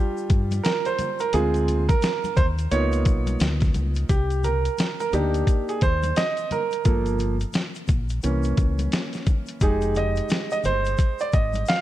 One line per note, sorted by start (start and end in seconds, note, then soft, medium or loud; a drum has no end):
0.00 1.30 G3 medium
0.00 1.30 D4 soft
0.00 1.30 F4 medium
0.00 0.67 G4 medium
0.17 shaker soft
0.30 0.59 G2 medium
0.30 kick loud
0.30 closed hi-hat medium
0.30 shaker soft
0.51 closed hi-hat medium
0.51 high conga medium
0.51 shaker soft
0.63 0.86 A#4 medium
0.63 snare loud
0.63 closed hi-hat medium
0.63 shaker medium
0.85 1.18 C5 medium
0.85 closed hi-hat soft
0.85 shaker soft
0.99 closed hi-hat medium
0.99 high conga medium
0.99 low conga medium
0.99 shaker soft
1.19 1.33 A#4 medium
1.19 closed hi-hat medium
1.19 shaker soft
1.33 1.91 D2 loud
1.33 1.82 G#3 medium
1.33 1.83 C4 medium
1.33 1.83 F4 medium
1.33 1.86 G#4 loud
1.33 closed hi-hat loud
1.33 shaker medium
1.54 closed hi-hat soft
1.54 shaker soft
1.68 closed hi-hat medium
1.68 low conga medium
1.68 shaker soft
1.89 2.38 A#4 medium
1.89 kick medium
1.89 closed hi-hat medium
1.89 high conga soft
1.89 shaker soft
2.02 snare loud
2.02 closed hi-hat medium
2.02 high conga soft
2.02 shaker medium
2.24 closed hi-hat soft
2.24 high conga medium
2.24 shaker soft
2.37 2.66 D#2 medium
2.37 2.44 C5 loud
2.37 kick medium
2.37 closed hi-hat medium
2.37 low conga medium
2.37 shaker medium
2.58 closed hi-hat soft
2.58 shaker soft
2.71 3.06 C#2 medium
2.71 4.06 A#3 medium
2.71 4.06 B3 soft
2.71 4.06 D#4 medium
2.71 4.06 F4 medium
2.71 3.37 C#5 loud
2.71 closed hi-hat medium
2.71 shaker medium
2.92 closed hi-hat soft
2.92 shaker soft
3.05 3.35 B1 medium
3.05 kick loud
3.05 closed hi-hat medium
3.05 shaker soft
3.27 closed hi-hat medium
3.27 high conga medium
3.27 shaker soft
3.40 3.69 D2 medium
3.40 snare loud
3.40 closed hi-hat loud
3.40 shaker medium
3.60 kick medium
3.60 snare soft
3.60 closed hi-hat soft
3.60 shaker soft
3.74 4.04 C#2 medium
3.74 closed hi-hat medium
3.74 high conga medium
3.74 low conga medium
3.74 shaker soft
3.95 closed hi-hat medium
3.95 shaker soft
4.09 4.67 C2 loud
4.09 4.45 G4 medium
4.09 kick loud
4.09 closed hi-hat loud
4.09 shaker medium
4.30 closed hi-hat soft
4.30 shaker soft
4.44 4.99 A#4 medium
4.44 closed hi-hat medium
4.44 low conga medium
4.44 shaker soft
4.65 closed hi-hat medium
4.65 shaker soft
4.78 snare loud
4.78 closed hi-hat medium
4.78 high conga soft
4.78 shaker medium
5.00 5.12 A#4 medium
5.00 closed hi-hat soft
5.00 shaker soft
5.13 5.42 D2 medium
5.13 6.12 A#3 soft
5.13 6.13 D4 medium
5.13 6.12 D#4 medium
5.13 5.70 G4 medium
5.13 closed hi-hat medium
5.13 low conga medium
5.13 shaker soft
5.34 closed hi-hat soft
5.34 shaker soft
5.47 kick medium
5.47 closed hi-hat medium
5.47 shaker medium
5.69 5.83 G#4 medium
5.69 closed hi-hat soft
5.69 shaker soft
5.81 6.11 D#2 medium
5.81 6.18 C5 loud
5.81 kick loud
5.81 closed hi-hat medium
5.81 shaker soft
6.03 closed hi-hat medium
6.03 high conga medium
6.03 shaker soft
6.16 6.52 D#5 loud
6.16 snare loud
6.16 closed hi-hat loud
6.16 shaker medium
6.37 closed hi-hat soft
6.37 shaker soft
6.51 7.17 A#4 medium
6.51 closed hi-hat medium
6.51 high conga medium
6.51 low conga medium
6.51 shaker soft
6.71 closed hi-hat medium
6.71 shaker soft
6.85 7.43 G1 medium
6.85 7.34 F3 medium
6.85 7.35 A#3 medium
6.85 7.35 A4 medium
6.85 kick loud
6.85 closed hi-hat loud
6.85 shaker medium
7.06 closed hi-hat soft
7.06 shaker soft
7.19 closed hi-hat medium
7.19 low conga medium
7.19 shaker soft
7.40 closed hi-hat medium
7.40 shaker soft
7.53 snare loud
7.53 closed hi-hat medium
7.53 high conga soft
7.53 shaker medium
7.75 closed hi-hat soft
7.75 shaker soft
7.88 8.18 A#1 medium
7.88 kick medium
7.88 closed hi-hat medium
7.88 low conga medium
7.88 shaker soft
8.09 closed hi-hat soft
8.09 shaker soft
8.23 8.53 C2 medium
8.23 9.57 E3 medium
8.23 9.57 A#3 medium
8.23 9.58 C#4 medium
8.23 closed hi-hat medium
8.23 shaker medium
8.43 closed hi-hat soft
8.43 shaker soft
8.57 8.87 C#2 medium
8.57 kick loud
8.57 closed hi-hat medium
8.57 shaker soft
8.79 closed hi-hat medium
8.79 high conga medium
8.79 shaker soft
8.92 snare loud
8.92 closed hi-hat medium
8.92 shaker medium
9.13 snare soft
9.13 closed hi-hat soft
9.13 shaker soft
9.26 kick medium
9.26 closed hi-hat medium
9.26 high conga medium
9.26 low conga medium
9.26 shaker soft
9.46 closed hi-hat medium
9.46 shaker soft
9.61 10.19 F1 loud
9.61 11.81 G#3 medium
9.61 11.81 D#4 medium
9.61 11.81 G4 medium
9.61 9.98 G#4 medium
9.61 kick loud
9.61 closed hi-hat loud
9.61 shaker medium
9.81 closed hi-hat soft
9.81 shaker soft
9.95 10.50 D#5 medium
9.95 closed hi-hat medium
9.95 low conga medium
9.95 shaker soft
10.16 closed hi-hat medium
10.16 shaker soft
10.29 snare loud
10.29 closed hi-hat medium
10.29 high conga soft
10.29 shaker medium
10.51 10.57 D#5 medium
10.51 closed hi-hat soft
10.51 shaker medium
10.64 10.94 G1 medium
10.64 11.22 C5 loud
10.64 closed hi-hat medium
10.64 low conga medium
10.64 shaker medium
10.85 closed hi-hat soft
10.85 shaker soft
10.98 kick medium
10.98 closed hi-hat medium
10.98 shaker medium
11.19 11.34 D5 medium
11.19 closed hi-hat soft
11.19 shaker soft
11.32 11.63 G#1 medium
11.32 11.66 D#5 medium
11.32 kick medium
11.32 closed hi-hat medium
11.32 shaker soft
11.53 closed hi-hat medium
11.53 high conga medium
11.53 shaker soft
11.66 11.81 F5 loud
11.66 snare loud
11.66 closed hi-hat medium
11.66 shaker medium